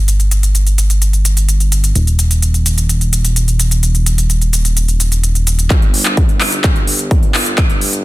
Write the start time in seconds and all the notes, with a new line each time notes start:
Already playing: G1
0.08 closed hi-hat, shaker
0.20 closed hi-hat, shaker
0.31 closed hi-hat, shaker
0.43 closed hi-hat, shaker
0.55 closed hi-hat, shaker
0.67 closed hi-hat, shaker
0.78 closed hi-hat, shaker
0.90 closed hi-hat, shaker
1.02 closed hi-hat, shaker
1.13 closed hi-hat, shaker
1.25 closed hi-hat, shaker
1.37 closed hi-hat, shaker
1.49 closed hi-hat, shaker
1.60 closed hi-hat, shaker
1.72 closed hi-hat, shaker
1.84 closed hi-hat, shaker
1.95 D#1, closed hi-hat, shaker
2.07 closed hi-hat, shaker
2.19 closed hi-hat, shaker
2.31 closed hi-hat, shaker
2.42 closed hi-hat, shaker
2.54 closed hi-hat, shaker
2.66 closed hi-hat, shaker
2.78 closed hi-hat, shaker
2.89 closed hi-hat, shaker
3.01 closed hi-hat, shaker
3.13 closed hi-hat, shaker
3.25 closed hi-hat, shaker
3.36 closed hi-hat, shaker
3.48 closed hi-hat, shaker
3.60 closed hi-hat, shaker
3.71 closed hi-hat, shaker
3.83 closed hi-hat, shaker
3.95 closed hi-hat, shaker
4.06 closed hi-hat, shaker
4.18 closed hi-hat, shaker
4.30 closed hi-hat, shaker
4.41 closed hi-hat, shaker
4.53 closed hi-hat, shaker
4.65 closed hi-hat, shaker
4.77 closed hi-hat, shaker
4.88 closed hi-hat, shaker
5.00 closed hi-hat, shaker
5.12 closed hi-hat, shaker
5.23 closed hi-hat, shaker
5.35 closed hi-hat, shaker
5.47 closed hi-hat, shaker
5.59 closed hi-hat, shaker
5.70 G1, kick, clap, closed hi-hat
5.82 closed hi-hat
5.94 open hi-hat
6.05 clap, closed hi-hat
6.17 kick, closed hi-hat
6.29 closed hi-hat
6.41 clap, open hi-hat
6.52 closed hi-hat
6.64 kick, clap, closed hi-hat
6.76 closed hi-hat
6.87 open hi-hat
6.99 closed hi-hat
7.11 kick, closed hi-hat
7.23 closed hi-hat
7.34 clap, open hi-hat
7.46 closed hi-hat
7.58 kick, clap, closed hi-hat
7.70 closed hi-hat
7.81 open hi-hat
7.93 closed hi-hat